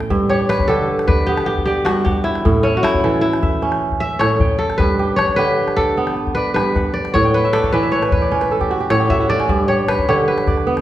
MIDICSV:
0, 0, Header, 1, 4, 480
1, 0, Start_track
1, 0, Tempo, 391389
1, 128, Time_signature, 12, 3, 24, 8
1, 13259, End_track
2, 0, Start_track
2, 0, Title_t, "Kora"
2, 0, Program_c, 0, 46
2, 0, Note_on_c, 0, 62, 87
2, 0, Note_on_c, 0, 64, 70
2, 261, Note_off_c, 0, 62, 0
2, 361, Note_on_c, 0, 73, 90
2, 374, Note_off_c, 0, 64, 0
2, 602, Note_on_c, 0, 71, 100
2, 830, Note_on_c, 0, 69, 96
2, 1314, Note_off_c, 0, 71, 0
2, 1319, Note_on_c, 0, 71, 89
2, 1552, Note_on_c, 0, 67, 89
2, 1768, Note_off_c, 0, 73, 0
2, 1787, Note_off_c, 0, 67, 0
2, 1792, Note_on_c, 0, 67, 91
2, 2025, Note_off_c, 0, 67, 0
2, 2030, Note_on_c, 0, 67, 87
2, 2266, Note_on_c, 0, 66, 87
2, 2339, Note_off_c, 0, 67, 0
2, 2446, Note_off_c, 0, 69, 0
2, 2509, Note_on_c, 0, 67, 82
2, 2583, Note_off_c, 0, 66, 0
2, 2746, Note_on_c, 0, 64, 87
2, 2826, Note_off_c, 0, 71, 0
2, 3228, Note_on_c, 0, 61, 92
2, 3395, Note_on_c, 0, 66, 74
2, 3465, Note_off_c, 0, 64, 0
2, 3469, Note_off_c, 0, 67, 0
2, 3470, Note_on_c, 0, 64, 107
2, 3936, Note_off_c, 0, 64, 0
2, 3941, Note_on_c, 0, 64, 88
2, 4909, Note_on_c, 0, 76, 106
2, 5142, Note_on_c, 0, 73, 95
2, 5188, Note_off_c, 0, 66, 0
2, 5360, Note_off_c, 0, 61, 0
2, 5624, Note_on_c, 0, 69, 90
2, 5859, Note_on_c, 0, 71, 92
2, 5863, Note_off_c, 0, 64, 0
2, 6177, Note_off_c, 0, 76, 0
2, 6327, Note_off_c, 0, 73, 0
2, 6332, Note_on_c, 0, 73, 100
2, 6572, Note_off_c, 0, 71, 0
2, 6577, Note_on_c, 0, 71, 102
2, 7065, Note_off_c, 0, 69, 0
2, 7070, Note_on_c, 0, 69, 98
2, 7739, Note_off_c, 0, 73, 0
2, 7779, Note_off_c, 0, 71, 0
2, 7784, Note_on_c, 0, 71, 97
2, 8019, Note_off_c, 0, 71, 0
2, 8024, Note_on_c, 0, 71, 99
2, 8507, Note_on_c, 0, 74, 91
2, 8686, Note_off_c, 0, 69, 0
2, 8753, Note_on_c, 0, 73, 101
2, 8826, Note_off_c, 0, 74, 0
2, 9000, Note_off_c, 0, 71, 0
2, 9005, Note_on_c, 0, 71, 94
2, 9233, Note_on_c, 0, 69, 89
2, 9469, Note_off_c, 0, 71, 0
2, 9474, Note_on_c, 0, 71, 94
2, 9705, Note_off_c, 0, 73, 0
2, 9710, Note_on_c, 0, 73, 84
2, 9956, Note_off_c, 0, 71, 0
2, 9961, Note_on_c, 0, 71, 81
2, 10849, Note_off_c, 0, 69, 0
2, 10914, Note_off_c, 0, 73, 0
2, 10919, Note_on_c, 0, 73, 96
2, 11159, Note_on_c, 0, 76, 105
2, 11233, Note_off_c, 0, 76, 0
2, 11400, Note_on_c, 0, 74, 97
2, 11469, Note_off_c, 0, 71, 0
2, 11474, Note_off_c, 0, 73, 0
2, 11872, Note_on_c, 0, 73, 97
2, 11945, Note_off_c, 0, 74, 0
2, 12126, Note_on_c, 0, 71, 93
2, 12364, Note_off_c, 0, 73, 0
2, 12369, Note_on_c, 0, 73, 90
2, 12443, Note_off_c, 0, 73, 0
2, 12599, Note_off_c, 0, 71, 0
2, 12604, Note_on_c, 0, 71, 72
2, 13259, Note_off_c, 0, 71, 0
2, 13259, End_track
3, 0, Start_track
3, 0, Title_t, "Kora"
3, 0, Program_c, 1, 46
3, 0, Note_on_c, 1, 45, 81
3, 0, Note_on_c, 1, 52, 82
3, 0, Note_on_c, 1, 61, 86
3, 0, Note_on_c, 1, 76, 73
3, 0, Note_on_c, 1, 79, 69
3, 127, Note_on_c, 1, 43, 83
3, 189, Note_off_c, 1, 45, 0
3, 189, Note_off_c, 1, 52, 0
3, 366, Note_on_c, 1, 67, 72
3, 429, Note_off_c, 1, 76, 0
3, 784, Note_off_c, 1, 79, 0
3, 815, Note_off_c, 1, 61, 0
3, 845, Note_off_c, 1, 67, 0
3, 850, Note_on_c, 1, 50, 78
3, 850, Note_on_c, 1, 67, 62
3, 1327, Note_on_c, 1, 74, 73
3, 1576, Note_on_c, 1, 59, 81
3, 2044, Note_off_c, 1, 74, 0
3, 2049, Note_on_c, 1, 74, 73
3, 2274, Note_off_c, 1, 43, 0
3, 2289, Note_on_c, 1, 43, 78
3, 2532, Note_on_c, 1, 78, 61
3, 2606, Note_off_c, 1, 67, 0
3, 3006, Note_on_c, 1, 45, 81
3, 3066, Note_off_c, 1, 43, 0
3, 3066, Note_off_c, 1, 50, 0
3, 3243, Note_on_c, 1, 69, 62
3, 3408, Note_off_c, 1, 74, 0
3, 3715, Note_off_c, 1, 78, 0
3, 3720, Note_off_c, 1, 69, 0
3, 3725, Note_on_c, 1, 52, 80
3, 3725, Note_on_c, 1, 69, 75
3, 3862, Note_off_c, 1, 59, 0
3, 4201, Note_on_c, 1, 76, 65
3, 4445, Note_on_c, 1, 61, 84
3, 4917, Note_off_c, 1, 76, 0
3, 4922, Note_on_c, 1, 76, 61
3, 5146, Note_off_c, 1, 45, 0
3, 5161, Note_on_c, 1, 45, 71
3, 5341, Note_off_c, 1, 69, 0
3, 5399, Note_on_c, 1, 79, 59
3, 5883, Note_on_c, 1, 43, 76
3, 5943, Note_off_c, 1, 45, 0
3, 5943, Note_off_c, 1, 52, 0
3, 6123, Note_on_c, 1, 67, 69
3, 6189, Note_off_c, 1, 76, 0
3, 6542, Note_off_c, 1, 79, 0
3, 6577, Note_off_c, 1, 61, 0
3, 6600, Note_on_c, 1, 50, 78
3, 6601, Note_off_c, 1, 67, 0
3, 6606, Note_on_c, 1, 67, 71
3, 7081, Note_on_c, 1, 74, 61
3, 7326, Note_on_c, 1, 59, 79
3, 7804, Note_off_c, 1, 74, 0
3, 7808, Note_on_c, 1, 74, 67
3, 8035, Note_off_c, 1, 43, 0
3, 8049, Note_on_c, 1, 43, 80
3, 8293, Note_on_c, 1, 78, 65
3, 8366, Note_off_c, 1, 67, 0
3, 8763, Note_off_c, 1, 78, 0
3, 8766, Note_on_c, 1, 45, 81
3, 8767, Note_on_c, 1, 78, 65
3, 8821, Note_off_c, 1, 43, 0
3, 8821, Note_off_c, 1, 50, 0
3, 8888, Note_on_c, 1, 79, 76
3, 9005, Note_off_c, 1, 78, 0
3, 9010, Note_on_c, 1, 78, 71
3, 9134, Note_on_c, 1, 76, 63
3, 9167, Note_off_c, 1, 74, 0
3, 9250, Note_on_c, 1, 74, 72
3, 9368, Note_on_c, 1, 73, 66
3, 9482, Note_off_c, 1, 74, 0
3, 9486, Note_on_c, 1, 52, 87
3, 9487, Note_on_c, 1, 74, 69
3, 9593, Note_off_c, 1, 76, 0
3, 9598, Note_on_c, 1, 76, 69
3, 9611, Note_off_c, 1, 59, 0
3, 9718, Note_off_c, 1, 73, 0
3, 9722, Note_on_c, 1, 73, 79
3, 9796, Note_off_c, 1, 74, 0
3, 9838, Note_on_c, 1, 71, 67
3, 9954, Note_off_c, 1, 73, 0
3, 9959, Note_on_c, 1, 73, 79
3, 10031, Note_off_c, 1, 79, 0
3, 10077, Note_on_c, 1, 74, 65
3, 10192, Note_off_c, 1, 73, 0
3, 10193, Note_off_c, 1, 78, 0
3, 10196, Note_on_c, 1, 61, 77
3, 10197, Note_on_c, 1, 73, 70
3, 10316, Note_off_c, 1, 71, 0
3, 10321, Note_on_c, 1, 71, 76
3, 10442, Note_on_c, 1, 69, 67
3, 10554, Note_on_c, 1, 67, 73
3, 10678, Note_on_c, 1, 66, 77
3, 10791, Note_off_c, 1, 67, 0
3, 10796, Note_on_c, 1, 67, 65
3, 10866, Note_off_c, 1, 76, 0
3, 10904, Note_off_c, 1, 45, 0
3, 10916, Note_off_c, 1, 69, 0
3, 10918, Note_on_c, 1, 45, 78
3, 10921, Note_on_c, 1, 69, 68
3, 11031, Note_off_c, 1, 67, 0
3, 11036, Note_on_c, 1, 67, 70
3, 11109, Note_off_c, 1, 66, 0
3, 11163, Note_on_c, 1, 66, 72
3, 11286, Note_on_c, 1, 64, 71
3, 11398, Note_on_c, 1, 62, 72
3, 11436, Note_off_c, 1, 74, 0
3, 11472, Note_off_c, 1, 61, 0
3, 11472, Note_off_c, 1, 73, 0
3, 11521, Note_on_c, 1, 61, 71
3, 11642, Note_on_c, 1, 43, 80
3, 11704, Note_off_c, 1, 45, 0
3, 11704, Note_off_c, 1, 52, 0
3, 11715, Note_off_c, 1, 66, 0
3, 11829, Note_off_c, 1, 71, 0
3, 11879, Note_off_c, 1, 67, 0
3, 11884, Note_on_c, 1, 67, 71
3, 12364, Note_off_c, 1, 67, 0
3, 12369, Note_on_c, 1, 67, 70
3, 12371, Note_on_c, 1, 50, 83
3, 12445, Note_off_c, 1, 61, 0
3, 12537, Note_off_c, 1, 69, 0
3, 12846, Note_on_c, 1, 74, 67
3, 13083, Note_on_c, 1, 59, 90
3, 13208, Note_off_c, 1, 64, 0
3, 13259, Note_off_c, 1, 43, 0
3, 13259, Note_off_c, 1, 50, 0
3, 13259, Note_off_c, 1, 59, 0
3, 13259, Note_off_c, 1, 62, 0
3, 13259, Note_off_c, 1, 67, 0
3, 13259, Note_off_c, 1, 74, 0
3, 13259, End_track
4, 0, Start_track
4, 0, Title_t, "Calabash"
4, 5, Note_on_c, 9, 38, 54
4, 127, Note_on_c, 9, 36, 66
4, 128, Note_off_c, 9, 38, 0
4, 249, Note_off_c, 9, 36, 0
4, 370, Note_on_c, 9, 38, 22
4, 490, Note_off_c, 9, 38, 0
4, 490, Note_on_c, 9, 38, 23
4, 611, Note_off_c, 9, 38, 0
4, 611, Note_on_c, 9, 38, 76
4, 732, Note_off_c, 9, 38, 0
4, 732, Note_on_c, 9, 36, 53
4, 732, Note_on_c, 9, 38, 21
4, 855, Note_off_c, 9, 36, 0
4, 855, Note_off_c, 9, 38, 0
4, 1217, Note_on_c, 9, 38, 57
4, 1329, Note_off_c, 9, 38, 0
4, 1329, Note_on_c, 9, 36, 72
4, 1329, Note_on_c, 9, 38, 25
4, 1452, Note_off_c, 9, 36, 0
4, 1452, Note_off_c, 9, 38, 0
4, 1456, Note_on_c, 9, 38, 22
4, 1579, Note_off_c, 9, 38, 0
4, 1686, Note_on_c, 9, 38, 61
4, 1809, Note_off_c, 9, 38, 0
4, 1813, Note_on_c, 9, 38, 23
4, 1934, Note_on_c, 9, 36, 56
4, 1936, Note_off_c, 9, 38, 0
4, 2055, Note_on_c, 9, 38, 24
4, 2056, Note_off_c, 9, 36, 0
4, 2178, Note_off_c, 9, 38, 0
4, 2283, Note_on_c, 9, 38, 76
4, 2405, Note_off_c, 9, 38, 0
4, 2527, Note_on_c, 9, 36, 71
4, 2527, Note_on_c, 9, 38, 24
4, 2650, Note_off_c, 9, 36, 0
4, 2650, Note_off_c, 9, 38, 0
4, 2767, Note_on_c, 9, 38, 21
4, 2887, Note_off_c, 9, 38, 0
4, 2887, Note_on_c, 9, 38, 49
4, 3010, Note_off_c, 9, 38, 0
4, 3010, Note_on_c, 9, 36, 67
4, 3010, Note_on_c, 9, 38, 24
4, 3133, Note_off_c, 9, 36, 0
4, 3133, Note_off_c, 9, 38, 0
4, 3247, Note_on_c, 9, 38, 22
4, 3369, Note_off_c, 9, 38, 0
4, 3370, Note_on_c, 9, 38, 21
4, 3489, Note_off_c, 9, 38, 0
4, 3489, Note_on_c, 9, 38, 76
4, 3611, Note_off_c, 9, 38, 0
4, 3613, Note_on_c, 9, 36, 49
4, 3730, Note_on_c, 9, 38, 21
4, 3736, Note_off_c, 9, 36, 0
4, 3852, Note_off_c, 9, 38, 0
4, 4089, Note_on_c, 9, 38, 50
4, 4207, Note_on_c, 9, 36, 72
4, 4212, Note_off_c, 9, 38, 0
4, 4330, Note_off_c, 9, 36, 0
4, 4440, Note_on_c, 9, 38, 18
4, 4562, Note_off_c, 9, 38, 0
4, 4562, Note_on_c, 9, 38, 49
4, 4682, Note_off_c, 9, 38, 0
4, 4682, Note_on_c, 9, 38, 21
4, 4802, Note_on_c, 9, 36, 52
4, 4805, Note_off_c, 9, 38, 0
4, 4925, Note_off_c, 9, 36, 0
4, 5161, Note_on_c, 9, 38, 66
4, 5283, Note_off_c, 9, 38, 0
4, 5397, Note_on_c, 9, 36, 59
4, 5519, Note_off_c, 9, 36, 0
4, 5761, Note_on_c, 9, 38, 45
4, 5879, Note_on_c, 9, 36, 60
4, 5883, Note_off_c, 9, 38, 0
4, 6002, Note_off_c, 9, 36, 0
4, 6114, Note_on_c, 9, 38, 18
4, 6236, Note_off_c, 9, 38, 0
4, 6241, Note_on_c, 9, 38, 18
4, 6361, Note_off_c, 9, 38, 0
4, 6361, Note_on_c, 9, 38, 64
4, 6482, Note_off_c, 9, 38, 0
4, 6482, Note_on_c, 9, 36, 43
4, 6482, Note_on_c, 9, 38, 18
4, 6604, Note_off_c, 9, 36, 0
4, 6604, Note_off_c, 9, 38, 0
4, 6963, Note_on_c, 9, 38, 47
4, 7085, Note_off_c, 9, 38, 0
4, 7086, Note_on_c, 9, 36, 59
4, 7086, Note_on_c, 9, 38, 22
4, 7206, Note_off_c, 9, 38, 0
4, 7206, Note_on_c, 9, 38, 17
4, 7209, Note_off_c, 9, 36, 0
4, 7329, Note_off_c, 9, 38, 0
4, 7445, Note_on_c, 9, 38, 49
4, 7566, Note_off_c, 9, 38, 0
4, 7566, Note_on_c, 9, 38, 20
4, 7688, Note_off_c, 9, 38, 0
4, 7688, Note_on_c, 9, 36, 51
4, 7810, Note_off_c, 9, 36, 0
4, 7810, Note_on_c, 9, 38, 20
4, 7932, Note_off_c, 9, 38, 0
4, 8048, Note_on_c, 9, 38, 67
4, 8170, Note_off_c, 9, 38, 0
4, 8286, Note_on_c, 9, 36, 63
4, 8286, Note_on_c, 9, 38, 19
4, 8409, Note_off_c, 9, 36, 0
4, 8409, Note_off_c, 9, 38, 0
4, 8530, Note_on_c, 9, 38, 21
4, 8645, Note_off_c, 9, 38, 0
4, 8645, Note_on_c, 9, 38, 46
4, 8767, Note_on_c, 9, 36, 60
4, 8768, Note_off_c, 9, 38, 0
4, 8890, Note_off_c, 9, 36, 0
4, 9125, Note_on_c, 9, 38, 20
4, 9239, Note_off_c, 9, 38, 0
4, 9239, Note_on_c, 9, 38, 72
4, 9360, Note_off_c, 9, 38, 0
4, 9360, Note_on_c, 9, 36, 52
4, 9360, Note_on_c, 9, 38, 22
4, 9482, Note_off_c, 9, 36, 0
4, 9482, Note_off_c, 9, 38, 0
4, 9843, Note_on_c, 9, 38, 46
4, 9958, Note_off_c, 9, 38, 0
4, 9958, Note_on_c, 9, 36, 65
4, 9958, Note_on_c, 9, 38, 22
4, 10080, Note_off_c, 9, 36, 0
4, 10080, Note_off_c, 9, 38, 0
4, 10085, Note_on_c, 9, 38, 22
4, 10207, Note_off_c, 9, 38, 0
4, 10318, Note_on_c, 9, 38, 51
4, 10439, Note_off_c, 9, 38, 0
4, 10439, Note_on_c, 9, 38, 22
4, 10557, Note_on_c, 9, 36, 56
4, 10561, Note_off_c, 9, 38, 0
4, 10676, Note_on_c, 9, 38, 22
4, 10680, Note_off_c, 9, 36, 0
4, 10799, Note_off_c, 9, 38, 0
4, 10918, Note_on_c, 9, 38, 70
4, 11041, Note_off_c, 9, 38, 0
4, 11161, Note_on_c, 9, 36, 68
4, 11161, Note_on_c, 9, 38, 22
4, 11284, Note_off_c, 9, 36, 0
4, 11284, Note_off_c, 9, 38, 0
4, 11406, Note_on_c, 9, 38, 23
4, 11526, Note_off_c, 9, 38, 0
4, 11526, Note_on_c, 9, 38, 49
4, 11639, Note_on_c, 9, 36, 68
4, 11648, Note_off_c, 9, 38, 0
4, 11762, Note_off_c, 9, 36, 0
4, 11886, Note_on_c, 9, 38, 22
4, 12007, Note_off_c, 9, 38, 0
4, 12007, Note_on_c, 9, 38, 23
4, 12123, Note_off_c, 9, 38, 0
4, 12123, Note_on_c, 9, 38, 72
4, 12245, Note_off_c, 9, 38, 0
4, 12248, Note_on_c, 9, 36, 53
4, 12248, Note_on_c, 9, 38, 22
4, 12370, Note_off_c, 9, 36, 0
4, 12370, Note_off_c, 9, 38, 0
4, 12727, Note_on_c, 9, 38, 56
4, 12844, Note_off_c, 9, 38, 0
4, 12844, Note_on_c, 9, 36, 76
4, 12844, Note_on_c, 9, 38, 24
4, 12967, Note_off_c, 9, 36, 0
4, 12967, Note_off_c, 9, 38, 0
4, 12968, Note_on_c, 9, 38, 22
4, 13091, Note_off_c, 9, 38, 0
4, 13208, Note_on_c, 9, 38, 56
4, 13259, Note_off_c, 9, 38, 0
4, 13259, End_track
0, 0, End_of_file